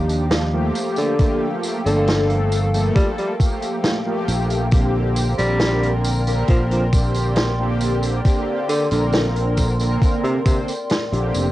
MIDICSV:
0, 0, Header, 1, 6, 480
1, 0, Start_track
1, 0, Key_signature, -2, "major"
1, 0, Tempo, 882353
1, 650, Time_signature, 4, 2, 24, 8
1, 6266, End_track
2, 0, Start_track
2, 0, Title_t, "Ambient pad"
2, 0, Program_c, 0, 92
2, 0, Note_on_c, 0, 67, 85
2, 0, Note_on_c, 0, 77, 75
2, 0, Note_on_c, 0, 86, 91
2, 394, Note_off_c, 0, 67, 0
2, 394, Note_off_c, 0, 77, 0
2, 394, Note_off_c, 0, 86, 0
2, 411, Note_on_c, 0, 69, 82
2, 411, Note_on_c, 0, 79, 76
2, 412, Note_on_c, 0, 77, 76
2, 2549, Note_off_c, 0, 69, 0
2, 2549, Note_off_c, 0, 77, 0
2, 2570, Note_on_c, 0, 70, 81
2, 2570, Note_on_c, 0, 74, 75
2, 2570, Note_on_c, 0, 84, 90
2, 6266, Note_off_c, 0, 70, 0
2, 6266, Note_off_c, 0, 74, 0
2, 6266, Note_off_c, 0, 79, 0
2, 6266, Note_off_c, 0, 84, 0
2, 6266, End_track
3, 0, Start_track
3, 0, Title_t, "Analog polysynth"
3, 0, Program_c, 1, 90
3, 0, Note_on_c, 1, 53, 73
3, 0, Note_on_c, 1, 62, 67
3, 0, Note_on_c, 1, 63, 67
3, 0, Note_on_c, 1, 67, 79
3, 261, Note_off_c, 1, 53, 0
3, 262, Note_off_c, 1, 62, 0
3, 264, Note_off_c, 1, 63, 0
3, 265, Note_off_c, 1, 67, 0
3, 287, Note_on_c, 1, 53, 98
3, 290, Note_on_c, 1, 57, 89
3, 292, Note_on_c, 1, 58, 90
3, 296, Note_on_c, 1, 67, 109
3, 619, Note_off_c, 1, 53, 0
3, 621, Note_off_c, 1, 57, 0
3, 622, Note_off_c, 1, 58, 0
3, 623, Note_off_c, 1, 67, 0
3, 647, Note_on_c, 1, 53, 94
3, 650, Note_on_c, 1, 57, 88
3, 653, Note_on_c, 1, 58, 86
3, 656, Note_on_c, 1, 67, 104
3, 981, Note_off_c, 1, 53, 0
3, 982, Note_off_c, 1, 57, 0
3, 984, Note_off_c, 1, 58, 0
3, 985, Note_off_c, 1, 67, 0
3, 1007, Note_on_c, 1, 53, 90
3, 1011, Note_on_c, 1, 57, 84
3, 1012, Note_on_c, 1, 58, 81
3, 1016, Note_on_c, 1, 69, 102
3, 1460, Note_off_c, 1, 53, 0
3, 1462, Note_off_c, 1, 57, 0
3, 1463, Note_off_c, 1, 58, 0
3, 1464, Note_off_c, 1, 69, 0
3, 1486, Note_on_c, 1, 53, 97
3, 1489, Note_on_c, 1, 57, 87
3, 1492, Note_on_c, 1, 58, 86
3, 1495, Note_on_c, 1, 69, 106
3, 1818, Note_off_c, 1, 53, 0
3, 1820, Note_off_c, 1, 57, 0
3, 1822, Note_off_c, 1, 58, 0
3, 1823, Note_off_c, 1, 69, 0
3, 1844, Note_on_c, 1, 53, 72
3, 1846, Note_on_c, 1, 57, 69
3, 1850, Note_on_c, 1, 58, 66
3, 1852, Note_on_c, 1, 67, 80
3, 2179, Note_off_c, 1, 53, 0
3, 2180, Note_off_c, 1, 57, 0
3, 2182, Note_off_c, 1, 58, 0
3, 2183, Note_off_c, 1, 67, 0
3, 2206, Note_on_c, 1, 53, 97
3, 2208, Note_on_c, 1, 57, 89
3, 2211, Note_on_c, 1, 58, 89
3, 2214, Note_on_c, 1, 67, 108
3, 2538, Note_off_c, 1, 53, 0
3, 2539, Note_off_c, 1, 57, 0
3, 2541, Note_off_c, 1, 58, 0
3, 2542, Note_off_c, 1, 67, 0
3, 2565, Note_on_c, 1, 50, 95
3, 2567, Note_on_c, 1, 58, 85
3, 2570, Note_on_c, 1, 60, 89
3, 2573, Note_on_c, 1, 67, 106
3, 2900, Note_off_c, 1, 50, 0
3, 2901, Note_off_c, 1, 58, 0
3, 2902, Note_off_c, 1, 60, 0
3, 2904, Note_off_c, 1, 67, 0
3, 2927, Note_on_c, 1, 50, 91
3, 2929, Note_on_c, 1, 58, 83
3, 2932, Note_on_c, 1, 60, 82
3, 2935, Note_on_c, 1, 70, 99
3, 3380, Note_off_c, 1, 50, 0
3, 3381, Note_off_c, 1, 58, 0
3, 3382, Note_off_c, 1, 60, 0
3, 3384, Note_off_c, 1, 70, 0
3, 3408, Note_on_c, 1, 50, 92
3, 3410, Note_on_c, 1, 58, 86
3, 3413, Note_on_c, 1, 60, 89
3, 3416, Note_on_c, 1, 70, 104
3, 3739, Note_off_c, 1, 50, 0
3, 3740, Note_off_c, 1, 58, 0
3, 3742, Note_off_c, 1, 60, 0
3, 3743, Note_off_c, 1, 70, 0
3, 3765, Note_on_c, 1, 50, 72
3, 3767, Note_on_c, 1, 58, 68
3, 3770, Note_on_c, 1, 60, 65
3, 3773, Note_on_c, 1, 67, 80
3, 4100, Note_off_c, 1, 50, 0
3, 4101, Note_off_c, 1, 58, 0
3, 4102, Note_off_c, 1, 60, 0
3, 4104, Note_off_c, 1, 67, 0
3, 4126, Note_on_c, 1, 50, 97
3, 4129, Note_on_c, 1, 58, 89
3, 4132, Note_on_c, 1, 60, 89
3, 4135, Note_on_c, 1, 67, 106
3, 4459, Note_off_c, 1, 50, 0
3, 4460, Note_off_c, 1, 58, 0
3, 4462, Note_off_c, 1, 60, 0
3, 4463, Note_off_c, 1, 67, 0
3, 4485, Note_on_c, 1, 50, 96
3, 4489, Note_on_c, 1, 58, 86
3, 4491, Note_on_c, 1, 60, 87
3, 4494, Note_on_c, 1, 67, 105
3, 4820, Note_off_c, 1, 50, 0
3, 4821, Note_off_c, 1, 58, 0
3, 4823, Note_off_c, 1, 60, 0
3, 4824, Note_off_c, 1, 67, 0
3, 4846, Note_on_c, 1, 50, 88
3, 4849, Note_on_c, 1, 58, 83
3, 4852, Note_on_c, 1, 60, 81
3, 4855, Note_on_c, 1, 70, 100
3, 5299, Note_off_c, 1, 50, 0
3, 5301, Note_off_c, 1, 58, 0
3, 5302, Note_off_c, 1, 60, 0
3, 5304, Note_off_c, 1, 70, 0
3, 5328, Note_on_c, 1, 50, 95
3, 5330, Note_on_c, 1, 58, 88
3, 5333, Note_on_c, 1, 60, 89
3, 5336, Note_on_c, 1, 70, 105
3, 5660, Note_off_c, 1, 50, 0
3, 5660, Note_off_c, 1, 58, 0
3, 5662, Note_off_c, 1, 60, 0
3, 5663, Note_off_c, 1, 70, 0
3, 5684, Note_on_c, 1, 50, 83
3, 5687, Note_on_c, 1, 58, 76
3, 5690, Note_on_c, 1, 60, 76
3, 5693, Note_on_c, 1, 72, 92
3, 5821, Note_off_c, 1, 50, 0
3, 5823, Note_off_c, 1, 58, 0
3, 5824, Note_off_c, 1, 60, 0
3, 5826, Note_off_c, 1, 72, 0
3, 6046, Note_on_c, 1, 50, 89
3, 6049, Note_on_c, 1, 58, 82
3, 6052, Note_on_c, 1, 60, 81
3, 6054, Note_on_c, 1, 67, 100
3, 6266, Note_off_c, 1, 50, 0
3, 6266, Note_off_c, 1, 58, 0
3, 6266, Note_off_c, 1, 60, 0
3, 6266, Note_off_c, 1, 67, 0
3, 6266, End_track
4, 0, Start_track
4, 0, Title_t, "Tenor saxophone"
4, 0, Program_c, 2, 66
4, 532, Note_on_c, 2, 50, 93
4, 819, Note_off_c, 2, 50, 0
4, 1010, Note_on_c, 2, 50, 93
4, 1298, Note_off_c, 2, 50, 0
4, 1607, Note_on_c, 2, 55, 93
4, 1686, Note_off_c, 2, 55, 0
4, 1731, Note_on_c, 2, 55, 76
4, 1807, Note_off_c, 2, 55, 0
4, 2931, Note_on_c, 2, 55, 97
4, 3218, Note_off_c, 2, 55, 0
4, 3530, Note_on_c, 2, 53, 89
4, 3607, Note_off_c, 2, 53, 0
4, 3652, Note_on_c, 2, 53, 77
4, 3727, Note_off_c, 2, 53, 0
4, 4727, Note_on_c, 2, 50, 97
4, 4826, Note_off_c, 2, 50, 0
4, 4850, Note_on_c, 2, 50, 91
4, 4926, Note_off_c, 2, 50, 0
4, 4966, Note_on_c, 2, 50, 78
4, 5045, Note_off_c, 2, 50, 0
4, 5569, Note_on_c, 2, 48, 91
4, 5646, Note_off_c, 2, 48, 0
4, 5686, Note_on_c, 2, 48, 78
4, 5765, Note_off_c, 2, 48, 0
4, 6266, End_track
5, 0, Start_track
5, 0, Title_t, "Fingered electric bass"
5, 0, Program_c, 3, 33
5, 0, Note_on_c, 3, 39, 85
5, 379, Note_off_c, 3, 39, 0
5, 1010, Note_on_c, 3, 31, 102
5, 1579, Note_off_c, 3, 31, 0
5, 2329, Note_on_c, 3, 34, 100
5, 2900, Note_off_c, 3, 34, 0
5, 2931, Note_on_c, 3, 34, 104
5, 3499, Note_off_c, 3, 34, 0
5, 3529, Note_on_c, 3, 34, 85
5, 4459, Note_off_c, 3, 34, 0
5, 4850, Note_on_c, 3, 34, 101
5, 5419, Note_off_c, 3, 34, 0
5, 6050, Note_on_c, 3, 34, 99
5, 6150, Note_off_c, 3, 34, 0
5, 6169, Note_on_c, 3, 29, 101
5, 6266, Note_off_c, 3, 29, 0
5, 6266, End_track
6, 0, Start_track
6, 0, Title_t, "Drums"
6, 50, Note_on_c, 9, 54, 39
6, 52, Note_on_c, 9, 42, 62
6, 105, Note_off_c, 9, 54, 0
6, 106, Note_off_c, 9, 42, 0
6, 167, Note_on_c, 9, 42, 90
6, 168, Note_on_c, 9, 38, 116
6, 170, Note_on_c, 9, 54, 28
6, 221, Note_off_c, 9, 42, 0
6, 223, Note_off_c, 9, 38, 0
6, 225, Note_off_c, 9, 54, 0
6, 408, Note_on_c, 9, 42, 77
6, 410, Note_on_c, 9, 54, 55
6, 462, Note_off_c, 9, 42, 0
6, 464, Note_off_c, 9, 54, 0
6, 524, Note_on_c, 9, 54, 35
6, 534, Note_on_c, 9, 42, 63
6, 578, Note_off_c, 9, 54, 0
6, 588, Note_off_c, 9, 42, 0
6, 646, Note_on_c, 9, 42, 83
6, 649, Note_on_c, 9, 36, 112
6, 650, Note_on_c, 9, 54, 29
6, 701, Note_off_c, 9, 42, 0
6, 704, Note_off_c, 9, 36, 0
6, 705, Note_off_c, 9, 54, 0
6, 888, Note_on_c, 9, 54, 61
6, 892, Note_on_c, 9, 42, 87
6, 943, Note_off_c, 9, 54, 0
6, 947, Note_off_c, 9, 42, 0
6, 1013, Note_on_c, 9, 54, 35
6, 1015, Note_on_c, 9, 42, 69
6, 1067, Note_off_c, 9, 54, 0
6, 1069, Note_off_c, 9, 42, 0
6, 1128, Note_on_c, 9, 42, 76
6, 1129, Note_on_c, 9, 54, 26
6, 1134, Note_on_c, 9, 38, 107
6, 1183, Note_off_c, 9, 42, 0
6, 1184, Note_off_c, 9, 54, 0
6, 1188, Note_off_c, 9, 38, 0
6, 1249, Note_on_c, 9, 42, 53
6, 1303, Note_off_c, 9, 42, 0
6, 1370, Note_on_c, 9, 42, 89
6, 1370, Note_on_c, 9, 54, 59
6, 1424, Note_off_c, 9, 54, 0
6, 1425, Note_off_c, 9, 42, 0
6, 1491, Note_on_c, 9, 54, 40
6, 1492, Note_on_c, 9, 42, 60
6, 1546, Note_off_c, 9, 42, 0
6, 1546, Note_off_c, 9, 54, 0
6, 1608, Note_on_c, 9, 54, 25
6, 1609, Note_on_c, 9, 36, 116
6, 1611, Note_on_c, 9, 42, 90
6, 1663, Note_off_c, 9, 36, 0
6, 1663, Note_off_c, 9, 54, 0
6, 1665, Note_off_c, 9, 42, 0
6, 1730, Note_on_c, 9, 42, 49
6, 1784, Note_off_c, 9, 42, 0
6, 1849, Note_on_c, 9, 36, 101
6, 1849, Note_on_c, 9, 42, 83
6, 1852, Note_on_c, 9, 54, 67
6, 1903, Note_off_c, 9, 36, 0
6, 1904, Note_off_c, 9, 42, 0
6, 1906, Note_off_c, 9, 54, 0
6, 1970, Note_on_c, 9, 42, 61
6, 1972, Note_on_c, 9, 54, 37
6, 2024, Note_off_c, 9, 42, 0
6, 2027, Note_off_c, 9, 54, 0
6, 2087, Note_on_c, 9, 42, 90
6, 2088, Note_on_c, 9, 38, 112
6, 2089, Note_on_c, 9, 54, 28
6, 2141, Note_off_c, 9, 42, 0
6, 2142, Note_off_c, 9, 38, 0
6, 2143, Note_off_c, 9, 54, 0
6, 2328, Note_on_c, 9, 42, 91
6, 2332, Note_on_c, 9, 54, 57
6, 2382, Note_off_c, 9, 42, 0
6, 2386, Note_off_c, 9, 54, 0
6, 2449, Note_on_c, 9, 42, 66
6, 2449, Note_on_c, 9, 54, 35
6, 2503, Note_off_c, 9, 54, 0
6, 2504, Note_off_c, 9, 42, 0
6, 2564, Note_on_c, 9, 54, 31
6, 2569, Note_on_c, 9, 36, 110
6, 2571, Note_on_c, 9, 42, 93
6, 2619, Note_off_c, 9, 54, 0
6, 2623, Note_off_c, 9, 36, 0
6, 2625, Note_off_c, 9, 42, 0
6, 2808, Note_on_c, 9, 42, 83
6, 2808, Note_on_c, 9, 54, 63
6, 2862, Note_off_c, 9, 42, 0
6, 2863, Note_off_c, 9, 54, 0
6, 2929, Note_on_c, 9, 42, 69
6, 2932, Note_on_c, 9, 54, 35
6, 2984, Note_off_c, 9, 42, 0
6, 2987, Note_off_c, 9, 54, 0
6, 3045, Note_on_c, 9, 42, 83
6, 3046, Note_on_c, 9, 38, 111
6, 3049, Note_on_c, 9, 54, 26
6, 3100, Note_off_c, 9, 38, 0
6, 3100, Note_off_c, 9, 42, 0
6, 3104, Note_off_c, 9, 54, 0
6, 3173, Note_on_c, 9, 42, 53
6, 3227, Note_off_c, 9, 42, 0
6, 3289, Note_on_c, 9, 42, 87
6, 3289, Note_on_c, 9, 54, 69
6, 3344, Note_off_c, 9, 42, 0
6, 3344, Note_off_c, 9, 54, 0
6, 3411, Note_on_c, 9, 54, 37
6, 3412, Note_on_c, 9, 42, 61
6, 3466, Note_off_c, 9, 54, 0
6, 3467, Note_off_c, 9, 42, 0
6, 3524, Note_on_c, 9, 42, 85
6, 3527, Note_on_c, 9, 54, 25
6, 3529, Note_on_c, 9, 36, 112
6, 3579, Note_off_c, 9, 42, 0
6, 3582, Note_off_c, 9, 54, 0
6, 3583, Note_off_c, 9, 36, 0
6, 3651, Note_on_c, 9, 42, 53
6, 3706, Note_off_c, 9, 42, 0
6, 3769, Note_on_c, 9, 36, 99
6, 3770, Note_on_c, 9, 42, 90
6, 3771, Note_on_c, 9, 54, 66
6, 3824, Note_off_c, 9, 36, 0
6, 3824, Note_off_c, 9, 42, 0
6, 3825, Note_off_c, 9, 54, 0
6, 3887, Note_on_c, 9, 54, 41
6, 3893, Note_on_c, 9, 42, 68
6, 3942, Note_off_c, 9, 54, 0
6, 3947, Note_off_c, 9, 42, 0
6, 4003, Note_on_c, 9, 54, 27
6, 4004, Note_on_c, 9, 42, 93
6, 4008, Note_on_c, 9, 38, 123
6, 4057, Note_off_c, 9, 54, 0
6, 4058, Note_off_c, 9, 42, 0
6, 4063, Note_off_c, 9, 38, 0
6, 4247, Note_on_c, 9, 42, 86
6, 4247, Note_on_c, 9, 54, 60
6, 4301, Note_off_c, 9, 42, 0
6, 4302, Note_off_c, 9, 54, 0
6, 4368, Note_on_c, 9, 54, 38
6, 4370, Note_on_c, 9, 42, 69
6, 4422, Note_off_c, 9, 54, 0
6, 4425, Note_off_c, 9, 42, 0
6, 4488, Note_on_c, 9, 54, 30
6, 4489, Note_on_c, 9, 36, 113
6, 4490, Note_on_c, 9, 42, 89
6, 4542, Note_off_c, 9, 54, 0
6, 4544, Note_off_c, 9, 36, 0
6, 4544, Note_off_c, 9, 42, 0
6, 4728, Note_on_c, 9, 42, 89
6, 4729, Note_on_c, 9, 54, 64
6, 4782, Note_off_c, 9, 42, 0
6, 4784, Note_off_c, 9, 54, 0
6, 4847, Note_on_c, 9, 42, 71
6, 4851, Note_on_c, 9, 54, 38
6, 4901, Note_off_c, 9, 42, 0
6, 4905, Note_off_c, 9, 54, 0
6, 4963, Note_on_c, 9, 54, 26
6, 4968, Note_on_c, 9, 42, 84
6, 4970, Note_on_c, 9, 38, 113
6, 5018, Note_off_c, 9, 54, 0
6, 5023, Note_off_c, 9, 42, 0
6, 5024, Note_off_c, 9, 38, 0
6, 5091, Note_on_c, 9, 42, 57
6, 5145, Note_off_c, 9, 42, 0
6, 5205, Note_on_c, 9, 42, 84
6, 5208, Note_on_c, 9, 54, 61
6, 5209, Note_on_c, 9, 36, 61
6, 5260, Note_off_c, 9, 42, 0
6, 5262, Note_off_c, 9, 54, 0
6, 5264, Note_off_c, 9, 36, 0
6, 5328, Note_on_c, 9, 54, 36
6, 5334, Note_on_c, 9, 42, 67
6, 5382, Note_off_c, 9, 54, 0
6, 5389, Note_off_c, 9, 42, 0
6, 5449, Note_on_c, 9, 36, 116
6, 5451, Note_on_c, 9, 42, 85
6, 5451, Note_on_c, 9, 54, 31
6, 5503, Note_off_c, 9, 36, 0
6, 5505, Note_off_c, 9, 42, 0
6, 5506, Note_off_c, 9, 54, 0
6, 5573, Note_on_c, 9, 42, 54
6, 5627, Note_off_c, 9, 42, 0
6, 5689, Note_on_c, 9, 36, 100
6, 5689, Note_on_c, 9, 54, 70
6, 5690, Note_on_c, 9, 42, 83
6, 5743, Note_off_c, 9, 36, 0
6, 5743, Note_off_c, 9, 54, 0
6, 5745, Note_off_c, 9, 42, 0
6, 5811, Note_on_c, 9, 54, 39
6, 5814, Note_on_c, 9, 42, 72
6, 5865, Note_off_c, 9, 54, 0
6, 5868, Note_off_c, 9, 42, 0
6, 5927, Note_on_c, 9, 42, 94
6, 5928, Note_on_c, 9, 54, 31
6, 5935, Note_on_c, 9, 38, 116
6, 5981, Note_off_c, 9, 42, 0
6, 5982, Note_off_c, 9, 54, 0
6, 5989, Note_off_c, 9, 38, 0
6, 6055, Note_on_c, 9, 42, 58
6, 6109, Note_off_c, 9, 42, 0
6, 6171, Note_on_c, 9, 42, 93
6, 6171, Note_on_c, 9, 54, 66
6, 6225, Note_off_c, 9, 54, 0
6, 6226, Note_off_c, 9, 42, 0
6, 6266, End_track
0, 0, End_of_file